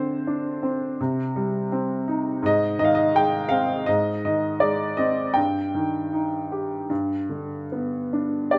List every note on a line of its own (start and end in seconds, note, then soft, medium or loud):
0.00 0.96 D3 medium
0.00 0.61 C4 soft
0.00 1.67 C5 medium
0.27 0.98 D4 soft
0.63 0.98 C4 soft
1.01 2.40 C3 medium
1.36 2.40 G3 soft
1.72 2.41 C4 soft
2.08 2.42 D#4 soft
2.42 3.83 G#2 medium
2.42 2.78 D#5 medium
2.79 3.84 D#3 soft
2.79 2.86 D#5 medium
2.84 2.91 F5 medium
2.95 3.17 D#5 medium
3.14 3.85 G#3 soft
3.14 3.52 G5 medium
3.49 3.86 C4 soft
3.49 3.88 F5 medium
3.86 5.33 G#2 medium
3.86 4.23 D#5 medium
4.25 5.34 D#3 soft
4.25 4.63 D#5 medium
4.60 5.34 G#3 soft
4.60 4.96 D5 medium
4.97 5.35 C4 soft
4.97 5.33 D#5 medium
5.34 6.86 G2 medium
5.34 7.66 G5 medium
5.75 6.87 D#3 soft
6.13 6.88 D#4 soft
6.52 6.90 G4 soft
6.90 8.59 G2 medium
7.29 8.59 D3 soft
7.72 8.59 B3 soft
8.13 8.59 D4 soft
8.51 8.59 G4 soft
8.51 8.59 D5 medium